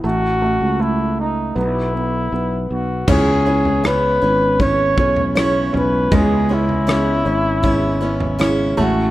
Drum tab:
CC |----------------|x---------------|----------------|
SD |----------------|----r-------r---|----r-------r---|
FT |----------------|o--o----o--o--o-|o--o----o--o--o-|
BD |----------------|o-------o-o-----|o-------o-------|